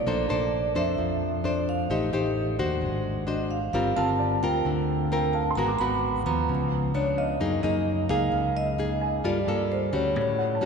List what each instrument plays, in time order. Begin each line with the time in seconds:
Already playing: vibraphone D5
0.07 fingered electric bass A#1, nylon-string guitar A#3 D4 A4 C5
0.29 fingered electric bass A#1, nylon-string guitar D4 A4 C5, vibraphone D5
0.75 fingered electric bass F2, nylon-string guitar D4 A4 C5, vibraphone E5
0.98 fingered electric bass F2, nylon-string guitar F3
1.44 nylon-string guitar D4 A4 C5, vibraphone D5
1.69 vibraphone F5
1.90 fingered electric bass A1, nylon-string guitar A3 D#4 G4 C5, vibraphone D#5
2.13 fingered electric bass A1, nylon-string guitar D#4 G4 C5
2.59 fingered electric bass D#2, nylon-string guitar D4 F#4 C5
2.81 fingered electric bass G#1, nylon-string guitar G#3
3.27 nylon-string guitar D4 F#4 C5, vibraphone D#5
3.51 vibraphone F5
3.73 fingered electric bass G1, nylon-string guitar G3 C4 F4 A#4, vibraphone F5
3.96 fingered electric bass G1, nylon-string guitar C4 F4 A#4, grand piano F5, vibraphone A5
4.19 grand piano D5
4.43 fingered electric bass D2, nylon-string guitar C4 F4 A#4, vibraphone G5
4.65 fingered electric bass D2, nylon-string guitar D3
5.12 nylon-string guitar C4 F4 A#4, vibraphone G5
5.33 grand piano F5, vibraphone A5
5.51 grand piano C6
5.55 fingered electric bass G#1, nylon-string guitar G#3 B3 F#4 A#4, vibraphone A#5
5.68 grand piano D6
5.79 fingered electric bass G#1, nylon-string guitar B3 F#4, vibraphone B5
6.26 fingered electric bass D#2, nylon-string guitar F3 B3, vibraphone A#5
6.49 fingered electric bass C#2, nylon-string guitar C#3
6.94 nylon-string guitar F3 B3 D4, vibraphone C#5
7.18 vibraphone D#5, grand piano F5
7.40 fingered electric bass F#2, nylon-string guitar F#3 A#3 D#4 G#4
7.63 fingered electric bass F#2, nylon-string guitar A#3 D#4 G#4, vibraphone D#5
8.09 fingered electric bass C#2, nylon-string guitar A#3 D#4 G#4, vibraphone F5
8.32 fingered electric bass C#2, nylon-string guitar C#3
8.57 vibraphone D#5
8.78 nylon-string guitar A#3 D#4 G#4
9.01 grand piano G#5
9.24 fingered electric bass G2, nylon-string guitar G3 A#3 F4 A4, vibraphone D5
9.47 fingered electric bass G2, nylon-string guitar A#3 F4 A4
9.72 vibraphone C5
9.93 fingered electric bass D2, nylon-string guitar G3 C#4 F#4, vibraphone C#5
10.16 nylon-string guitar A2, fingered electric bass A2
10.39 grand piano F#5
10.55 grand piano A5
10.61 nylon-string guitar G3 C#4